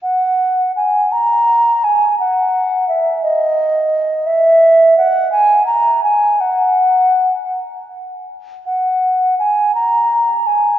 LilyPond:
\new Staff \with { instrumentName = "Flute" } { \time 6/8 \key fis \mixolydian \tempo 4. = 56 fis''4 gis''8 ais''4 gis''8 | fis''4 e''8 dis''4. | e''4 fis''8 gis''8 ais''8 gis''8 | fis''4. r4. |
fis''4 gis''8 ais''4 gis''8 | }